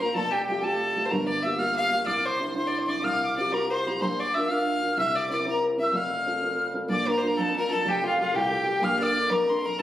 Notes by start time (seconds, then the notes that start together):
Already playing: A#1 A#2
0.00 A#3 D4 F4 A#4 A#5
0.14 F1 F2 A4 A5
0.31 G4 G5
0.46 A3 F4 G4 G5
0.61 A3 F4 G4 A4 A5
0.96 A3 F4 G4
1.05 C5
1.09 G1 G2 A#4 A#5
1.26 D5 D6
1.42 A#3 F4 G4 E5 E6
1.58 A#3 F4 G4 F5 F6
1.76 F5 F6
1.90 A#3 F4 G4
2.06 C2 C3 D5 D6
2.25 C5 C6
2.39 C4 D4 E4
2.54 C4 D4 E4 C5 C6
2.67 D5
2.78 C5
2.87 C4 D4 E4 D5 D6
3.03 C2 C3 F5 F6
3.23 D6
3.37 C4 F4 G4 D5 D6
3.53 C4 F4 G4 A#4 A#5
3.70 C5 C6
3.87 C4 F4 G4 A#5
4.01 A#1 A#2 C5 C6
4.20 D5 D6
4.34 D4 F4 A#4 E5 E6
4.48 D4 F4 A#4 F5 F6
4.82 D4 F4 A#4
4.97 C2 C3 E5 E6
5.15 D5 D6
5.30 C4 E4 A#4 D5 D6
5.45 C4 E4 A#4 A#5
5.77 C4 E4 A#4 E5
5.82 E6
5.93 F1 F2 F5 F6
6.26 C4 F4 A4
6.42 C4 F4 A4
6.74 C4 F4 A4
6.89 A#1 A#2 D5
6.93 D6
7.07 D4 F4 A#4 A#5
7.17 C5
7.23 D4 F4 A#4 A#5
7.27 A#4
7.37 F2 A4 A5
7.56 D4 F4 A#4 A#5
7.70 D4 F4 A4 A#4 A5
7.85 F1 F2 G4
7.90 G5
8.03 F4 G4 A4 F5
8.18 F4 G4 A4 F5
8.34 C2 G4 G5
8.50 F4 G4 A4
8.66 F4 G4 A4
8.81 A#1 A#2 F5 F6
8.99 D4 A4 A#4 D5 D6
9.16 D4 A4 A#4 D6
9.30 F2 A#4 A#5
9.48 D4 A4 A#4 C6
9.62 D4 A4 A#4 A#5
9.79 A4 A5